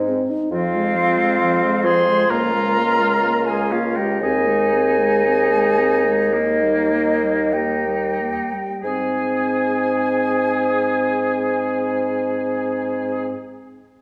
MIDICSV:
0, 0, Header, 1, 6, 480
1, 0, Start_track
1, 0, Key_signature, -4, "major"
1, 0, Tempo, 875912
1, 282, Time_signature, 4, 2, 24, 8
1, 764, Tempo, 918836
1, 1724, Tempo, 990099
1, 2204, Tempo, 1065719
1, 3164, Tempo, 1188119
1, 3644, Tempo, 1307190
1, 4124, Tempo, 1265823
1, 6084, End_track
2, 0, Start_track
2, 0, Title_t, "Flute"
2, 0, Program_c, 0, 73
2, 287, Note_on_c, 0, 77, 85
2, 980, Note_off_c, 0, 77, 0
2, 995, Note_on_c, 0, 84, 72
2, 1238, Note_on_c, 0, 82, 83
2, 1246, Note_off_c, 0, 84, 0
2, 1836, Note_on_c, 0, 80, 64
2, 1843, Note_off_c, 0, 82, 0
2, 1961, Note_on_c, 0, 77, 58
2, 1968, Note_off_c, 0, 80, 0
2, 2079, Note_on_c, 0, 79, 55
2, 2086, Note_off_c, 0, 77, 0
2, 2200, Note_off_c, 0, 79, 0
2, 2203, Note_on_c, 0, 80, 78
2, 3046, Note_off_c, 0, 80, 0
2, 3160, Note_on_c, 0, 75, 59
2, 3639, Note_on_c, 0, 79, 50
2, 3645, Note_off_c, 0, 75, 0
2, 4116, Note_off_c, 0, 79, 0
2, 4118, Note_on_c, 0, 80, 55
2, 5812, Note_off_c, 0, 80, 0
2, 6084, End_track
3, 0, Start_track
3, 0, Title_t, "Clarinet"
3, 0, Program_c, 1, 71
3, 284, Note_on_c, 1, 65, 96
3, 1002, Note_on_c, 1, 72, 89
3, 1010, Note_off_c, 1, 65, 0
3, 1237, Note_on_c, 1, 70, 86
3, 1245, Note_off_c, 1, 72, 0
3, 1854, Note_on_c, 1, 68, 72
3, 1861, Note_off_c, 1, 70, 0
3, 1964, Note_on_c, 1, 65, 70
3, 1971, Note_off_c, 1, 68, 0
3, 2096, Note_on_c, 1, 67, 67
3, 2103, Note_off_c, 1, 65, 0
3, 2206, Note_off_c, 1, 67, 0
3, 2208, Note_on_c, 1, 68, 84
3, 3162, Note_on_c, 1, 63, 62
3, 3168, Note_off_c, 1, 68, 0
3, 3643, Note_on_c, 1, 67, 50
3, 3649, Note_off_c, 1, 63, 0
3, 4061, Note_off_c, 1, 67, 0
3, 4123, Note_on_c, 1, 68, 62
3, 5817, Note_off_c, 1, 68, 0
3, 6084, End_track
4, 0, Start_track
4, 0, Title_t, "Oboe"
4, 0, Program_c, 2, 68
4, 295, Note_on_c, 2, 60, 78
4, 1004, Note_on_c, 2, 68, 75
4, 1011, Note_off_c, 2, 60, 0
4, 1239, Note_on_c, 2, 65, 90
4, 1247, Note_off_c, 2, 68, 0
4, 1835, Note_off_c, 2, 65, 0
4, 1838, Note_on_c, 2, 65, 58
4, 1958, Note_on_c, 2, 61, 58
4, 1965, Note_off_c, 2, 65, 0
4, 2075, Note_on_c, 2, 63, 56
4, 2082, Note_off_c, 2, 61, 0
4, 2192, Note_off_c, 2, 63, 0
4, 2195, Note_on_c, 2, 63, 73
4, 3156, Note_on_c, 2, 58, 62
4, 3162, Note_off_c, 2, 63, 0
4, 3637, Note_on_c, 2, 63, 49
4, 3643, Note_off_c, 2, 58, 0
4, 4052, Note_off_c, 2, 63, 0
4, 4115, Note_on_c, 2, 68, 57
4, 5809, Note_off_c, 2, 68, 0
4, 6084, End_track
5, 0, Start_track
5, 0, Title_t, "French horn"
5, 0, Program_c, 3, 60
5, 44, Note_on_c, 3, 60, 58
5, 166, Note_on_c, 3, 63, 56
5, 174, Note_off_c, 3, 60, 0
5, 284, Note_off_c, 3, 63, 0
5, 287, Note_on_c, 3, 53, 63
5, 408, Note_on_c, 3, 56, 55
5, 416, Note_off_c, 3, 53, 0
5, 529, Note_on_c, 3, 53, 48
5, 538, Note_off_c, 3, 56, 0
5, 648, Note_on_c, 3, 56, 44
5, 657, Note_off_c, 3, 53, 0
5, 767, Note_off_c, 3, 56, 0
5, 774, Note_on_c, 3, 53, 51
5, 892, Note_on_c, 3, 56, 53
5, 900, Note_off_c, 3, 53, 0
5, 1005, Note_on_c, 3, 53, 49
5, 1013, Note_off_c, 3, 56, 0
5, 1121, Note_on_c, 3, 56, 48
5, 1128, Note_off_c, 3, 53, 0
5, 1231, Note_off_c, 3, 56, 0
5, 1234, Note_on_c, 3, 58, 54
5, 1357, Note_on_c, 3, 56, 49
5, 1365, Note_off_c, 3, 58, 0
5, 1488, Note_on_c, 3, 58, 46
5, 1496, Note_off_c, 3, 56, 0
5, 1603, Note_on_c, 3, 56, 41
5, 1610, Note_off_c, 3, 58, 0
5, 1725, Note_off_c, 3, 56, 0
5, 1729, Note_on_c, 3, 58, 48
5, 1847, Note_on_c, 3, 56, 41
5, 1854, Note_off_c, 3, 58, 0
5, 1963, Note_on_c, 3, 58, 46
5, 1970, Note_off_c, 3, 56, 0
5, 2086, Note_on_c, 3, 56, 42
5, 2094, Note_off_c, 3, 58, 0
5, 2201, Note_off_c, 3, 56, 0
5, 2204, Note_on_c, 3, 60, 51
5, 2321, Note_on_c, 3, 56, 43
5, 2327, Note_off_c, 3, 60, 0
5, 2435, Note_on_c, 3, 60, 36
5, 2441, Note_off_c, 3, 56, 0
5, 2552, Note_on_c, 3, 56, 36
5, 2559, Note_off_c, 3, 60, 0
5, 2669, Note_off_c, 3, 56, 0
5, 2672, Note_on_c, 3, 60, 40
5, 2790, Note_on_c, 3, 56, 37
5, 2797, Note_off_c, 3, 60, 0
5, 2914, Note_on_c, 3, 60, 37
5, 2921, Note_off_c, 3, 56, 0
5, 3034, Note_on_c, 3, 56, 38
5, 3041, Note_off_c, 3, 60, 0
5, 3152, Note_off_c, 3, 56, 0
5, 3155, Note_on_c, 3, 58, 41
5, 3277, Note_on_c, 3, 55, 35
5, 3283, Note_off_c, 3, 58, 0
5, 3393, Note_on_c, 3, 58, 36
5, 3399, Note_off_c, 3, 55, 0
5, 3522, Note_on_c, 3, 55, 33
5, 3528, Note_off_c, 3, 58, 0
5, 3644, Note_off_c, 3, 55, 0
5, 3646, Note_on_c, 3, 58, 35
5, 3764, Note_on_c, 3, 55, 33
5, 3770, Note_off_c, 3, 58, 0
5, 3893, Note_on_c, 3, 58, 33
5, 3898, Note_off_c, 3, 55, 0
5, 4009, Note_on_c, 3, 55, 34
5, 4015, Note_off_c, 3, 58, 0
5, 4126, Note_off_c, 3, 55, 0
5, 4131, Note_on_c, 3, 60, 49
5, 5826, Note_off_c, 3, 60, 0
5, 6084, End_track
6, 0, Start_track
6, 0, Title_t, "Bassoon"
6, 0, Program_c, 4, 70
6, 0, Note_on_c, 4, 44, 84
6, 109, Note_off_c, 4, 44, 0
6, 281, Note_on_c, 4, 41, 69
6, 1216, Note_off_c, 4, 41, 0
6, 1236, Note_on_c, 4, 37, 62
6, 2201, Note_on_c, 4, 39, 59
6, 2208, Note_off_c, 4, 37, 0
6, 3951, Note_off_c, 4, 39, 0
6, 4121, Note_on_c, 4, 44, 54
6, 5815, Note_off_c, 4, 44, 0
6, 6084, End_track
0, 0, End_of_file